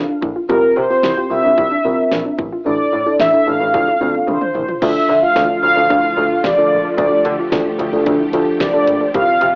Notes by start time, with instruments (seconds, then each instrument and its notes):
Already playing: fm electric piano D4 F4 A4, analog polysynth F5
0.09 synth pluck D4
0.22 double bass A#1, synth pluck E4, kick
0.36 synth pluck F4
0.49 double bass C2, fm electric piano C4 F4 G4, synth pluck F4, analog polysynth A#4, kick
0.76 double bass C3, synth pluck G4, analog polysynth C5
0.90 fm electric piano C4 F4 G4, synth pluck G4
1.03 double bass C2, synth pluck E4, snare
1.17 fm electric piano C4 F4 G4, synth pluck F4
1.31 double bass C2, fm electric piano C4 F4 G4, analog polysynth E5
1.44 double bass C2, synth pluck D4
1.58 double bass C2, synth pluck E4, kick
1.71 synth pluck D4
1.85 double bass C2, synth pluck C4, fm electric piano C4 F4 A#4
2.12 double bass A#1, synth pluck D4, snare
2.25 synth pluck D4
2.39 double bass A1, synth pluck E4, kick
2.52 synth pluck F4
2.66 double bass A1, fm electric piano D4 E4 A4, synth pluck D4, analog polysynth D5
2.93 double bass A2, synth pluck E4
3.06 fm electric piano D4 E4 A4, synth pluck E4
3.20 double bass A1, synth pluck D4, analog polysynth E5, snare
3.33 fm electric piano D4 E4 A4, synth pluck E4
3.47 double bass A1, fm electric piano D4 E4 A4, analog polysynth F5
3.60 double bass A1, synth pluck D4
3.74 double bass D2, fm electric piano D4 F4 A4, synth pluck E4, kick, high tom
3.87 synth pluck D4, high tom
4.01 double bass D2, synth pluck C4, fm electric piano D4 F4 A4, mid tom
4.14 mid tom
4.28 double bass C2, synth pluck D4, analog polysynth C5, mid tom
4.41 synth pluck D4, mid tom
4.55 double bass A#1, synth pluck E4, floor tom
4.68 synth pluck F4, floor tom
4.82 double bass D2, string machine D3 F3 A3 F4, fm electric piano D4 F4 A4, synth pluck F4, analog polysynth E5, kick, crash
4.95 synth pluck F4
5.09 double bass D3, synth pluck A4
5.22 synth pluck F4, analog polysynth F5
5.36 double bass D2, fm electric piano D4 F4 A4, kick, snare
5.50 synth pluck D4
5.63 double bass D2, synth pluck F4, analog polysynth F5
5.76 double bass D2, fm electric piano D4 F4 A4, synth pluck D4
5.90 double bass D2, synth pluck D4, kick
6.04 synth pluck E4
6.17 double bass D2, fm electric piano D4 F4 A4, synth pluck F4
6.44 double bass C2, synth pluck G4, analog polysynth D5, kick, snare
6.58 fm electric piano D4 F4 A4, synth pluck A4
6.71 double bass A#1
6.85 synth pluck A4
6.98 double bass D2, fm electric piano D4 F4 A4, synth pluck F4, string machine G4, analog polysynth D5, kick, closed hi-hat
7.12 synth pluck F4
7.25 double bass D3, synth pluck A4, closed hi-hat
7.39 synth pluck F4
7.52 double bass D2, fm electric piano D4 F4 A4, kick, snare, closed hi-hat
7.66 synth pluck D4
7.79 double bass D2, synth pluck F4, closed hi-hat
7.93 double bass D2, synth pluck D4, fm electric piano D4 F4 A4
8.06 double bass D2, synth pluck D4, kick, closed hi-hat
8.20 synth pluck E4
8.33 double bass D2, fm electric piano D4 F4 A4, synth pluck F4, closed hi-hat
8.60 double bass C2, synth pluck G4, analog polysynth D5, kick, snare, closed hi-hat
8.74 fm electric piano D4 F4 A4, synth pluck A4
8.87 double bass A#1, closed hi-hat
9.01 synth pluck A4
9.14 double bass C2, string machine C3 F3 G3 F4, fm electric piano C4 F4 G4, synth pluck F4, analog polysynth F5, kick, closed hi-hat
9.28 synth pluck F4
9.41 double bass C3, synth pluck G4, closed hi-hat